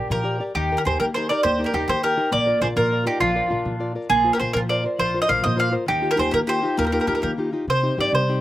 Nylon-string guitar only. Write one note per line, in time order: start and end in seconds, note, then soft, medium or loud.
0.00 0.19 G4 soft
0.00 0.19 A#4 soft
0.00 0.20 D5 soft
0.10 0.39 F3 medium
0.24 0.39 G4 soft
0.24 0.39 A#4 soft
0.24 0.40 D5 soft
0.40 0.52 G4 soft
0.40 0.52 A#4 soft
0.40 0.52 D5 soft
0.56 0.84 D#3 medium
0.71 0.85 D#4 soft
0.71 0.85 G4 soft
0.71 0.86 A#4 soft
0.86 1.09 D#4 soft
0.86 1.09 G4 soft
0.86 1.10 A#4 soft
1.01 1.29 A#3 medium
1.17 1.29 D#4 soft
1.17 1.30 G4 soft
1.17 1.30 A#4 soft
1.30 1.54 D#4 soft
1.30 1.54 G4 soft
1.30 1.54 A#4 soft
1.45 1.73 A#3 medium
1.59 1.73 D#4 soft
1.59 1.73 G4 soft
1.59 1.73 A#4 soft
1.74 1.97 D#4 soft
1.74 1.97 G4 soft
1.74 1.98 A#4 medium
1.89 2.17 A#3 medium
2.03 2.16 D#4 soft
2.03 2.16 G4 soft
2.03 2.17 A#4 soft
2.17 2.29 D#4 soft
2.17 2.29 G4 soft
2.17 2.29 A#4 soft
2.31 2.60 A#3 medium
2.46 2.61 F4 soft
2.46 2.60 A#4 soft
2.46 2.61 D5 soft
2.62 2.85 F4 soft
2.62 2.85 A#4 soft
2.62 2.86 D5 medium
2.76 3.05 F3 medium
2.91 3.04 F4 soft
2.91 3.05 A#4 soft
2.91 3.05 D5 soft
3.05 3.29 F4 soft
3.05 3.30 A#4 soft
3.05 3.30 D5 soft
3.20 3.49 F3 medium
3.35 3.49 F4 soft
3.35 3.50 A#4 soft
3.35 3.50 D5 soft
3.50 3.74 F4 soft
3.50 3.75 A#4 soft
3.50 3.75 D5 soft
3.65 3.94 F3 soft
3.80 3.94 F4 soft
3.80 3.94 A#4 soft
3.80 3.95 D5 soft
3.95 4.07 F4 soft
3.95 4.07 A#4 soft
3.95 4.07 D5 soft
4.10 4.39 A#3 medium
4.24 4.39 F4 soft
4.24 4.39 A#4 soft
4.24 4.39 C5 soft
4.40 4.64 F4 soft
4.40 4.64 A#4 soft
4.40 4.64 C5 soft
4.55 4.84 F3 soft
4.69 4.83 F4 soft
4.69 4.83 A#4 soft
4.69 4.84 C5 soft
4.84 5.08 F4 soft
4.84 5.09 A#4 soft
4.84 5.09 C5 soft
4.99 5.28 F3 medium
5.14 5.27 F4 soft
5.14 5.27 A#4 soft
5.14 5.28 C5 soft
5.28 5.53 F4 soft
5.28 5.53 A#4 soft
5.28 5.53 C5 soft
5.42 5.72 F3 medium
5.56 5.71 F4 soft
5.56 5.71 A#4 soft
5.56 5.71 C5 soft
5.72 5.84 F4 soft
5.72 5.84 A#4 soft
5.72 5.85 C5 medium
5.86 6.16 D#3 medium
6.02 6.15 D#4 soft
6.02 6.15 F4 soft
6.02 6.16 G4 soft
6.16 6.41 D#4 soft
6.16 6.41 F4 soft
6.16 6.41 G4 soft
6.32 6.61 A#3 medium
6.47 6.62 D#4 soft
6.47 6.62 F4 soft
6.47 6.62 G4 soft
6.63 6.87 D#4 soft
6.63 6.87 F4 soft
6.63 6.87 G4 soft
6.78 7.07 A#3 medium
6.93 7.07 D#4 soft
6.93 7.07 F4 soft
6.93 7.08 G4 soft
7.08 7.32 D#4 soft
7.08 7.32 F4 soft
7.08 7.33 G4 medium
7.23 7.52 A#3 soft
7.38 7.52 D#4 soft
7.38 7.52 F4 soft
7.38 7.52 G4 soft
7.53 7.65 D#4 soft
7.53 7.65 F4 soft
7.53 7.65 G4 soft
7.68 7.97 C3 medium
7.83 7.96 C4 soft
7.83 7.97 D#4 soft
7.83 7.97 G4 soft
7.98 8.22 C4 soft
7.98 8.22 D#4 soft
7.98 8.22 G4 soft
8.13 8.41 G3 medium
8.29 8.41 C4 soft
8.29 8.41 D#4 soft
8.29 8.41 G4 soft